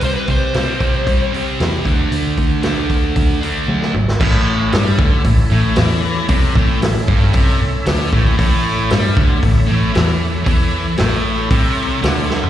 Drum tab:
CC |----------------|----------------|x---------------|----------------|
HH |o-o-o-o-o-o-o-o-|o-o-o-o-o-o-----|----o---o---o---|o---o---o---o---|
SD |----o-------o---|----o--------o-o|----o-------o---|----o-------o---|
T1 |----------------|------------o---|----------------|----------------|
T2 |----------------|--------------o-|----------------|----------------|
FT |----------------|----------------|----------------|----------------|
BD |--o---o-o-----o-|--o---o-o-------|o-----o-o-------|o-o---o-o-----o-|

CC |----------------|----------------|
HH |o---o---o---o---|o---o---o---o---|
SD |----o-------o---|----o-------o-o-|
T1 |----------------|----------------|
T2 |----------------|----------------|
FT |----------------|---------------o|
BD |o-----o-o-------|o-------o-------|